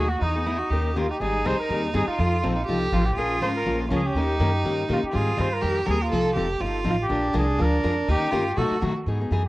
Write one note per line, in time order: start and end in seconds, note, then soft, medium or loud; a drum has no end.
0.00 0.17 D#2 medium
0.00 0.16 F#4 medium
0.00 0.10 G#4 medium
0.09 0.24 F#4 medium
0.21 0.61 E2 medium
0.21 0.34 E3 medium
0.21 0.34 B3 medium
0.21 0.47 D#4 medium
0.21 0.35 D#4 medium
0.21 0.96 D#4 medium
0.21 0.34 G#4 medium
0.35 0.45 B3 soft
0.35 0.45 D#4 soft
0.35 0.46 G#4 soft
0.46 0.56 E3 medium
0.46 0.56 B3 medium
0.46 0.56 D#4 medium
0.46 0.59 E4 medium
0.46 0.56 G#4 medium
0.58 0.71 F#4 medium
0.69 1.10 D#2 medium
0.69 0.89 D#3 medium
0.69 0.89 A#3 medium
0.69 0.90 C#4 medium
0.69 0.98 G4 medium
0.69 0.90 G4 medium
0.69 0.90 A#4 medium
0.96 1.05 D#3 medium
0.96 1.06 A#3 medium
0.96 1.05 C#4 medium
0.96 1.12 F4 medium
0.96 1.10 F4 medium
0.96 1.06 G4 medium
0.96 1.06 A#4 medium
1.10 1.20 D#4 medium
1.10 1.22 G4 medium
1.20 1.44 G#1 medium
1.20 1.38 D#3 medium
1.20 1.38 G3 medium
1.20 1.38 C4 medium
1.20 1.38 D#4 medium
1.20 2.20 D#4 medium
1.20 1.48 G#4 loud
1.20 1.39 G#4 medium
1.45 1.57 C2 medium
1.45 1.55 D#3 medium
1.45 1.55 G3 medium
1.45 1.55 C4 medium
1.45 1.55 D#4 medium
1.45 1.55 G#4 medium
1.45 1.59 C5 medium
1.60 1.82 A#4 medium
1.60 muted upright bass stroke soft
1.69 1.93 D#2 medium
1.69 1.87 D#3 medium
1.69 1.87 G3 medium
1.69 1.87 C4 medium
1.69 1.87 D#4 medium
1.69 1.88 G#4 medium
1.93 2.06 G2 medium
1.93 2.03 D#3 medium
1.93 2.04 G3 medium
1.93 2.04 C4 medium
1.93 2.04 D#4 medium
1.93 2.04 G#4 medium
1.93 2.07 G#4 medium
2.07 2.77 F4 medium
2.07 muted upright bass stroke soft
2.18 2.42 F2 medium
2.18 2.36 F3 medium
2.18 2.36 C4 medium
2.18 2.36 D#4 medium
2.18 2.45 F4 medium
2.18 2.36 A4 medium
2.43 2.67 A#1 medium
2.43 2.53 F3 medium
2.43 2.53 C4 medium
2.43 2.57 C4 medium
2.43 2.53 D#4 medium
2.43 2.53 A4 loud
2.55 2.65 D#4 medium
2.66 2.91 C2 medium
2.66 2.86 F3 medium
2.66 2.86 C4 medium
2.66 2.86 D#4 medium
2.66 3.12 G4 medium
2.66 2.86 A4 medium
2.92 3.16 A1 medium
2.92 3.02 F3 medium
2.92 3.03 C4 medium
2.92 3.02 D#4 medium
2.92 3.07 F4 medium
2.92 3.03 A4 medium
3.06 3.19 G4 medium
3.15 3.41 A#1 medium
3.15 3.35 F3 medium
3.15 3.35 G#3 medium
3.15 3.35 C#4 medium
3.15 3.86 F4 loud
3.15 3.35 F4 medium
3.15 3.42 G#4 loud
3.15 3.35 A#4 medium
3.41 3.65 G#1 medium
3.41 3.51 F3 medium
3.41 3.51 G#3 medium
3.41 3.52 C#4 medium
3.41 3.51 F4 medium
3.41 3.52 A#4 medium
3.41 3.48 C5 medium
3.56 3.78 A#4 medium
3.66 3.90 A#1 medium
3.66 3.84 F3 medium
3.66 3.84 G#3 medium
3.66 3.84 C#4 medium
3.66 3.84 F4 medium
3.66 3.84 A#4 medium
3.90 4.14 C#2 medium
3.90 4.00 F3 medium
3.90 4.01 G#3 medium
3.90 4.19 C#4 medium
3.90 4.01 C#4 medium
3.90 4.01 F4 medium
3.90 4.01 A#4 loud
3.95 4.08 G#4 medium
4.06 4.79 G4 medium
4.15 4.39 D#2 medium
4.15 4.33 D#3 medium
4.15 4.33 A#3 medium
4.15 4.33 C#4 medium
4.15 5.03 D#4 loud
4.15 4.33 G4 medium
4.15 4.34 A#4 medium
4.40 4.64 F#2 medium
4.40 4.50 D#3 medium
4.40 4.50 A#3 medium
4.40 4.49 C#4 medium
4.40 4.50 G4 medium
4.40 4.50 A#4 medium
4.64 4.88 G2 medium
4.64 4.82 D#3 medium
4.64 4.82 A#3 medium
4.64 4.82 C#4 medium
4.64 4.82 G4 medium
4.64 4.83 A#4 medium
4.88 5.02 A#2 medium
4.88 4.98 D#3 medium
4.88 4.99 A#3 medium
4.88 4.99 C#4 medium
4.88 4.99 G4 medium
4.88 4.99 A#4 medium
4.93 4.98 F4 medium
5.03 5.18 G4 medium
5.03 muted upright bass stroke soft
5.12 5.38 G#2 medium
5.12 5.31 D#3 medium
5.12 5.31 G3 medium
5.12 5.31 C4 medium
5.12 5.31 D#4 medium
5.12 5.63 F4 medium
5.12 5.31 G#4 medium
5.17 5.42 G#4 medium
5.37 5.62 G2 medium
5.37 5.47 D#3 medium
5.37 5.47 G3 medium
5.37 5.48 C4 medium
5.37 5.48 D#4 medium
5.37 5.48 G#4 medium
5.37 5.55 C5 medium
5.53 5.77 A#4 medium
5.61 5.87 F2 medium
5.61 5.80 D#3 medium
5.61 5.80 G3 medium
5.61 5.80 C4 medium
5.61 5.80 D#4 medium
5.61 5.87 G4 medium
5.61 5.80 G#4 medium
5.85 6.10 D#2 medium
5.85 5.96 D#3 medium
5.85 5.97 G3 medium
5.85 5.97 C4 medium
5.85 5.97 D#4 medium
5.85 5.97 G#4 medium
5.85 6.10 A#4 loud
5.89 6.04 G#4 medium
6.02 6.48 F4 medium
6.11 6.35 C2 medium
6.11 6.29 F3 medium
6.11 6.30 C4 medium
6.11 6.30 D#4 medium
6.11 6.34 A4 loud
6.11 6.30 A4 medium
6.35 6.59 F1 medium
6.35 6.46 F3 medium
6.35 6.46 C4 medium
6.35 6.46 D#4 medium
6.35 6.62 G4 medium
6.35 6.46 A4 medium
6.60 6.84 G1 medium
6.60 6.78 F3 medium
6.60 6.78 C4 medium
6.60 6.79 D#4 medium
6.60 7.10 F4 loud
6.60 6.79 A4 medium
6.84 7.09 A1 medium
6.84 6.95 F3 medium
6.84 6.95 C4 medium
6.84 6.95 D#4 medium
6.84 6.95 A4 medium
6.90 6.95 F4 medium
7.03 7.34 G4 loud
7.09 7.34 A#1 medium
7.09 7.27 F3 medium
7.09 7.28 G#3 medium
7.09 7.28 D4 medium
7.09 8.10 D4 medium
7.09 7.28 F4 medium
7.09 7.28 A#4 medium
7.33 7.58 C2 medium
7.33 7.44 F3 medium
7.33 7.44 G#3 medium
7.33 7.44 D4 medium
7.33 7.44 F4 medium
7.33 7.44 A#4 loud
7.38 7.63 G#4 medium
7.58 7.84 D2 medium
7.58 7.77 F3 medium
7.58 7.77 G#3 medium
7.58 7.77 D4 medium
7.58 7.77 F4 medium
7.58 7.77 A#4 medium
7.58 8.10 A#4 loud
7.83 8.08 F2 medium
7.83 7.94 F3 medium
7.83 7.93 G#3 medium
7.83 7.94 D4 medium
7.83 7.94 F4 medium
7.83 7.94 A#4 medium
8.08 8.21 D#2 medium
8.08 8.26 D#3 medium
8.08 8.26 A#3 medium
8.08 8.26 C#4 medium
8.08 8.33 D#4 medium
8.08 8.27 G4 medium
8.08 8.59 G4 loud
8.08 8.27 A#4 medium
8.22 muted upright bass stroke soft
8.31 8.57 G2 medium
8.31 8.42 D#3 medium
8.31 8.43 A#3 medium
8.31 8.43 C#4 loud
8.31 8.55 F4 medium
8.31 8.43 G4 medium
8.31 8.43 A#4 medium
8.56 8.75 B2 medium
8.56 8.70 B2 medium
8.56 8.75 F#3 medium
8.56 8.75 A3 medium
8.56 8.75 D#4 medium
8.56 8.92 F#4 medium
8.56 8.75 F#4 medium
8.56 8.82 A4 medium
8.71 muted upright bass stroke soft
8.81 8.92 B2 medium
8.81 9.06 D#3 medium
8.81 8.92 F#3 medium
8.81 8.92 A3 medium
8.81 8.92 D#4 medium
8.81 8.92 F#4 medium
9.06 9.30 G#2 medium
9.06 9.20 E3 medium
9.06 9.20 B3 medium
9.06 9.20 D#4 medium
9.06 9.19 G#4 medium
9.20 9.31 B3 soft
9.20 9.31 D#4 soft
9.20 9.31 G#4 soft
9.31 9.48 F#2 medium
9.31 9.41 E3 medium
9.31 9.42 B3 medium
9.31 9.42 D#4 medium
9.31 9.42 G#4 medium